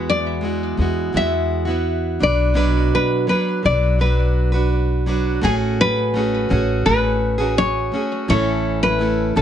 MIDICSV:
0, 0, Header, 1, 4, 480
1, 0, Start_track
1, 0, Tempo, 715137
1, 1722, Time_signature, 4, 2, 24, 8
1, 6321, End_track
2, 0, Start_track
2, 0, Title_t, "Nylon-string guitar"
2, 0, Program_c, 0, 24
2, 64, Note_on_c, 0, 74, 104
2, 746, Note_off_c, 0, 74, 0
2, 784, Note_on_c, 0, 76, 93
2, 1466, Note_off_c, 0, 76, 0
2, 1499, Note_on_c, 0, 74, 91
2, 1976, Note_off_c, 0, 74, 0
2, 1979, Note_on_c, 0, 71, 80
2, 2202, Note_off_c, 0, 71, 0
2, 2210, Note_on_c, 0, 71, 81
2, 2451, Note_off_c, 0, 71, 0
2, 2454, Note_on_c, 0, 74, 76
2, 2671, Note_off_c, 0, 74, 0
2, 2691, Note_on_c, 0, 71, 60
2, 3139, Note_off_c, 0, 71, 0
2, 3655, Note_on_c, 0, 68, 80
2, 3718, Note_off_c, 0, 68, 0
2, 3898, Note_on_c, 0, 71, 100
2, 4582, Note_off_c, 0, 71, 0
2, 4603, Note_on_c, 0, 71, 85
2, 5086, Note_off_c, 0, 71, 0
2, 5089, Note_on_c, 0, 73, 101
2, 5537, Note_off_c, 0, 73, 0
2, 5570, Note_on_c, 0, 73, 99
2, 5900, Note_off_c, 0, 73, 0
2, 5926, Note_on_c, 0, 71, 97
2, 6258, Note_off_c, 0, 71, 0
2, 6289, Note_on_c, 0, 69, 71
2, 6321, Note_off_c, 0, 69, 0
2, 6321, End_track
3, 0, Start_track
3, 0, Title_t, "Steel-string acoustic guitar"
3, 0, Program_c, 1, 25
3, 0, Note_on_c, 1, 52, 78
3, 0, Note_on_c, 1, 56, 83
3, 0, Note_on_c, 1, 59, 83
3, 0, Note_on_c, 1, 64, 94
3, 0, Note_on_c, 1, 66, 86
3, 267, Note_off_c, 1, 56, 0
3, 275, Note_on_c, 1, 56, 64
3, 281, Note_off_c, 1, 52, 0
3, 281, Note_off_c, 1, 59, 0
3, 283, Note_off_c, 1, 64, 0
3, 284, Note_on_c, 1, 59, 56
3, 291, Note_on_c, 1, 64, 69
3, 296, Note_off_c, 1, 66, 0
3, 299, Note_on_c, 1, 66, 61
3, 512, Note_off_c, 1, 56, 0
3, 520, Note_on_c, 1, 56, 59
3, 523, Note_off_c, 1, 59, 0
3, 526, Note_off_c, 1, 64, 0
3, 530, Note_off_c, 1, 66, 0
3, 532, Note_on_c, 1, 59, 59
3, 540, Note_on_c, 1, 64, 59
3, 547, Note_on_c, 1, 66, 69
3, 748, Note_off_c, 1, 56, 0
3, 756, Note_off_c, 1, 59, 0
3, 756, Note_on_c, 1, 56, 60
3, 762, Note_off_c, 1, 64, 0
3, 764, Note_on_c, 1, 59, 56
3, 770, Note_off_c, 1, 66, 0
3, 770, Note_on_c, 1, 64, 65
3, 779, Note_on_c, 1, 66, 63
3, 1101, Note_off_c, 1, 66, 0
3, 1109, Note_on_c, 1, 66, 55
3, 1115, Note_off_c, 1, 64, 0
3, 1119, Note_off_c, 1, 56, 0
3, 1123, Note_off_c, 1, 59, 0
3, 1123, Note_on_c, 1, 64, 54
3, 1133, Note_on_c, 1, 59, 47
3, 1473, Note_on_c, 1, 54, 50
3, 1475, Note_off_c, 1, 66, 0
3, 1477, Note_off_c, 1, 59, 0
3, 1480, Note_on_c, 1, 62, 65
3, 1482, Note_off_c, 1, 64, 0
3, 1489, Note_on_c, 1, 66, 60
3, 1495, Note_on_c, 1, 71, 74
3, 1703, Note_off_c, 1, 54, 0
3, 1705, Note_on_c, 1, 47, 78
3, 1706, Note_off_c, 1, 62, 0
3, 1708, Note_off_c, 1, 66, 0
3, 1711, Note_on_c, 1, 54, 88
3, 1714, Note_on_c, 1, 62, 85
3, 1715, Note_off_c, 1, 71, 0
3, 1716, Note_on_c, 1, 66, 99
3, 1723, Note_on_c, 1, 71, 95
3, 2193, Note_off_c, 1, 47, 0
3, 2193, Note_off_c, 1, 54, 0
3, 2195, Note_off_c, 1, 62, 0
3, 2195, Note_on_c, 1, 54, 57
3, 2202, Note_off_c, 1, 71, 0
3, 2203, Note_on_c, 1, 62, 71
3, 2205, Note_off_c, 1, 66, 0
3, 2208, Note_on_c, 1, 66, 63
3, 2217, Note_on_c, 1, 71, 62
3, 2427, Note_off_c, 1, 54, 0
3, 2435, Note_on_c, 1, 54, 57
3, 2436, Note_off_c, 1, 62, 0
3, 2444, Note_off_c, 1, 66, 0
3, 2444, Note_on_c, 1, 62, 66
3, 2449, Note_off_c, 1, 71, 0
3, 2452, Note_on_c, 1, 66, 62
3, 2462, Note_on_c, 1, 71, 65
3, 2669, Note_off_c, 1, 54, 0
3, 2674, Note_off_c, 1, 62, 0
3, 2677, Note_on_c, 1, 54, 58
3, 2682, Note_off_c, 1, 66, 0
3, 2682, Note_on_c, 1, 62, 66
3, 2690, Note_on_c, 1, 66, 66
3, 2691, Note_off_c, 1, 71, 0
3, 2699, Note_on_c, 1, 71, 62
3, 3026, Note_off_c, 1, 71, 0
3, 3034, Note_on_c, 1, 71, 59
3, 3039, Note_off_c, 1, 54, 0
3, 3039, Note_off_c, 1, 66, 0
3, 3042, Note_off_c, 1, 62, 0
3, 3047, Note_on_c, 1, 66, 52
3, 3058, Note_on_c, 1, 62, 47
3, 3397, Note_off_c, 1, 62, 0
3, 3397, Note_off_c, 1, 71, 0
3, 3398, Note_on_c, 1, 54, 68
3, 3404, Note_off_c, 1, 66, 0
3, 3405, Note_on_c, 1, 62, 68
3, 3411, Note_on_c, 1, 66, 78
3, 3418, Note_on_c, 1, 71, 81
3, 3632, Note_off_c, 1, 54, 0
3, 3635, Note_on_c, 1, 57, 75
3, 3636, Note_off_c, 1, 66, 0
3, 3640, Note_off_c, 1, 62, 0
3, 3642, Note_on_c, 1, 61, 86
3, 3645, Note_on_c, 1, 66, 92
3, 3647, Note_off_c, 1, 71, 0
3, 3649, Note_on_c, 1, 68, 92
3, 4117, Note_off_c, 1, 57, 0
3, 4120, Note_on_c, 1, 57, 69
3, 4122, Note_off_c, 1, 66, 0
3, 4125, Note_off_c, 1, 68, 0
3, 4129, Note_off_c, 1, 61, 0
3, 4131, Note_on_c, 1, 61, 68
3, 4138, Note_on_c, 1, 66, 68
3, 4141, Note_on_c, 1, 68, 73
3, 4347, Note_off_c, 1, 57, 0
3, 4356, Note_off_c, 1, 61, 0
3, 4356, Note_on_c, 1, 57, 61
3, 4364, Note_off_c, 1, 66, 0
3, 4364, Note_on_c, 1, 61, 68
3, 4371, Note_off_c, 1, 68, 0
3, 4373, Note_on_c, 1, 66, 70
3, 4378, Note_on_c, 1, 68, 74
3, 4593, Note_off_c, 1, 57, 0
3, 4601, Note_on_c, 1, 57, 66
3, 4602, Note_off_c, 1, 61, 0
3, 4606, Note_off_c, 1, 66, 0
3, 4609, Note_off_c, 1, 68, 0
3, 4610, Note_on_c, 1, 61, 60
3, 4616, Note_on_c, 1, 66, 64
3, 4620, Note_on_c, 1, 68, 67
3, 4946, Note_off_c, 1, 68, 0
3, 4954, Note_on_c, 1, 68, 66
3, 4961, Note_off_c, 1, 57, 0
3, 4961, Note_off_c, 1, 66, 0
3, 4965, Note_off_c, 1, 61, 0
3, 4969, Note_on_c, 1, 66, 52
3, 4975, Note_on_c, 1, 61, 51
3, 5314, Note_on_c, 1, 57, 53
3, 5317, Note_off_c, 1, 68, 0
3, 5318, Note_off_c, 1, 61, 0
3, 5322, Note_off_c, 1, 66, 0
3, 5326, Note_on_c, 1, 61, 66
3, 5331, Note_on_c, 1, 66, 65
3, 5337, Note_on_c, 1, 68, 65
3, 5557, Note_off_c, 1, 57, 0
3, 5559, Note_on_c, 1, 45, 83
3, 5560, Note_off_c, 1, 61, 0
3, 5561, Note_on_c, 1, 52, 85
3, 5565, Note_off_c, 1, 66, 0
3, 5567, Note_on_c, 1, 57, 82
3, 5568, Note_on_c, 1, 61, 85
3, 5569, Note_off_c, 1, 68, 0
3, 5570, Note_on_c, 1, 64, 89
3, 5575, Note_on_c, 1, 69, 92
3, 6031, Note_off_c, 1, 57, 0
3, 6033, Note_on_c, 1, 57, 62
3, 6038, Note_off_c, 1, 61, 0
3, 6039, Note_off_c, 1, 45, 0
3, 6041, Note_on_c, 1, 61, 61
3, 6045, Note_off_c, 1, 64, 0
3, 6048, Note_on_c, 1, 64, 66
3, 6052, Note_off_c, 1, 69, 0
3, 6055, Note_on_c, 1, 69, 71
3, 6272, Note_off_c, 1, 57, 0
3, 6279, Note_off_c, 1, 61, 0
3, 6280, Note_on_c, 1, 57, 69
3, 6284, Note_off_c, 1, 64, 0
3, 6287, Note_off_c, 1, 69, 0
3, 6287, Note_on_c, 1, 61, 62
3, 6292, Note_on_c, 1, 64, 66
3, 6321, Note_off_c, 1, 52, 0
3, 6321, Note_off_c, 1, 57, 0
3, 6321, Note_off_c, 1, 61, 0
3, 6321, Note_off_c, 1, 64, 0
3, 6321, End_track
4, 0, Start_track
4, 0, Title_t, "Upright bass"
4, 0, Program_c, 2, 32
4, 0, Note_on_c, 2, 40, 95
4, 495, Note_off_c, 2, 40, 0
4, 526, Note_on_c, 2, 40, 89
4, 745, Note_off_c, 2, 40, 0
4, 766, Note_on_c, 2, 40, 91
4, 1457, Note_off_c, 2, 40, 0
4, 1487, Note_on_c, 2, 35, 87
4, 1937, Note_off_c, 2, 35, 0
4, 2449, Note_on_c, 2, 35, 92
4, 3618, Note_off_c, 2, 35, 0
4, 3648, Note_on_c, 2, 33, 94
4, 4337, Note_off_c, 2, 33, 0
4, 4368, Note_on_c, 2, 33, 104
4, 4585, Note_off_c, 2, 33, 0
4, 4605, Note_on_c, 2, 33, 88
4, 5296, Note_off_c, 2, 33, 0
4, 5562, Note_on_c, 2, 33, 98
4, 6254, Note_off_c, 2, 33, 0
4, 6284, Note_on_c, 2, 33, 96
4, 6321, Note_off_c, 2, 33, 0
4, 6321, End_track
0, 0, End_of_file